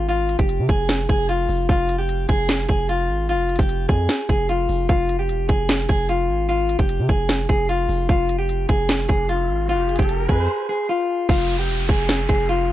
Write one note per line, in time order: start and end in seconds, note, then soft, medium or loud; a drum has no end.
0.00 0.37 G#1 loud
0.09 0.37 F4 loud
0.09 closed hi-hat medium
0.29 closed hi-hat medium
0.39 0.61 F1 loud
0.39 0.67 G4 medium
0.39 kick loud
0.49 closed hi-hat medium
0.59 0.69 C3 loud
0.69 1.07 F1 loud
0.69 1.07 G#4 medium
0.69 kick medium
0.69 closed hi-hat medium
0.89 snare loud
0.89 closed hi-hat medium
1.09 1.48 F1 loud
1.09 1.27 G#4 medium
1.09 kick medium
1.29 1.67 F4 medium
1.29 closed hi-hat medium
1.49 1.68 F1 loud
1.49 open hi-hat medium
1.69 2.27 F1 loud
1.69 1.98 F4 medium
1.69 kick loud
1.69 closed hi-hat medium
1.89 closed hi-hat medium
1.98 2.27 G4 medium
2.09 closed hi-hat medium
2.29 2.67 F1 loud
2.29 2.66 G#4 medium
2.29 kick loud
2.29 closed hi-hat medium
2.49 snare loud
2.49 closed hi-hat medium
2.69 3.11 F1 loud
2.69 2.87 G#4 medium
2.69 kick loud
2.69 closed hi-hat medium
2.89 3.27 F4 medium
2.89 closed hi-hat medium
3.09 3.36 G#1 medium
3.29 3.57 F4 loud
3.29 closed hi-hat medium
3.34 3.58 F1 loud
3.49 closed hi-hat soft
3.56 3.88 F1 loud
3.56 3.87 G4 medium
3.56 kick loud
3.56 closed hi-hat medium
3.62 closed hi-hat medium
3.69 closed hi-hat medium
3.89 4.08 F2 loud
3.89 4.26 G#4 medium
3.89 kick loud
3.89 closed hi-hat medium
4.09 snare loud
4.09 closed hi-hat medium
4.29 4.68 F1 loud
4.29 4.47 G#4 medium
4.29 kick medium
4.49 4.87 F4 medium
4.49 closed hi-hat medium
4.69 4.88 F1 loud
4.69 open hi-hat medium
4.89 5.31 F1 loud
4.89 5.17 F4 loud
4.89 kick loud
4.89 closed hi-hat medium
5.09 closed hi-hat medium
5.19 5.47 G4 medium
5.29 5.41 E1 loud
5.29 closed hi-hat medium
5.39 5.49 F1 loud
5.49 5.88 F1 loud
5.49 5.86 G#4 medium
5.49 kick loud
5.49 closed hi-hat medium
5.69 snare loud
5.69 closed hi-hat medium
5.89 6.31 F1 loud
5.89 6.07 G#4 medium
5.89 kick medium
5.89 closed hi-hat medium
6.09 6.47 F4 medium
6.09 closed hi-hat medium
6.29 6.77 G#1 loud
6.49 6.77 F4 loud
6.49 closed hi-hat medium
6.69 closed hi-hat medium
6.79 7.01 F1 loud
6.79 7.07 G4 medium
6.79 kick loud
6.89 closed hi-hat medium
6.99 7.09 C3 loud
7.09 7.48 F1 loud
7.09 7.47 G#4 medium
7.09 kick loud
7.09 closed hi-hat medium
7.29 snare loud
7.29 closed hi-hat medium
7.49 7.88 F1 loud
7.49 7.67 G#4 medium
7.49 kick loud
7.69 8.07 F4 medium
7.69 closed hi-hat medium
7.89 8.08 F1 loud
7.89 open hi-hat medium
8.09 8.67 F1 loud
8.09 8.38 F4 medium
8.09 kick loud
8.09 closed hi-hat medium
8.09 riser medium
8.29 closed hi-hat medium
8.39 8.67 G4 medium
8.49 closed hi-hat medium
8.69 9.08 F1 loud
8.69 9.07 G#4 medium
8.69 kick loud
8.69 closed hi-hat medium
8.89 snare loud
8.89 closed hi-hat medium
9.09 9.51 F1 loud
9.09 9.27 G#4 medium
9.09 kick loud
9.09 closed hi-hat medium
9.29 9.67 F4 medium
9.29 closed hi-hat medium
9.49 9.76 G#1 loud
9.69 9.97 F4 loud
9.69 closed hi-hat medium
9.74 9.98 F1 loud
9.89 closed hi-hat medium
9.96 10.28 F1 loud
9.96 10.27 G4 medium
9.96 kick loud
9.96 closed hi-hat medium
10.02 closed hi-hat medium
10.09 closed hi-hat medium
10.29 10.48 F2 loud
10.29 10.66 G#4 medium
10.29 kick medium
10.29 closed hi-hat medium
10.69 10.87 G#4 medium
10.89 11.27 F4 medium
11.29 11.71 F1 loud
11.29 11.57 F4 loud
11.29 kick loud
11.29 closed hi-hat medium
11.29 crash loud
11.29 downlifter medium
11.49 closed hi-hat medium
11.59 11.87 G4 medium
11.69 11.81 E1 loud
11.69 closed hi-hat medium
11.79 11.89 F1 loud
11.89 12.27 F1 loud
11.89 12.26 G#4 medium
11.89 kick loud
11.89 closed hi-hat medium
12.09 snare loud
12.09 closed hi-hat medium
12.29 12.71 F1 loud
12.29 12.47 G#4 medium
12.29 kick loud
12.29 closed hi-hat medium
12.49 12.72 F4 medium
12.49 closed hi-hat medium
12.69 12.72 G#1 loud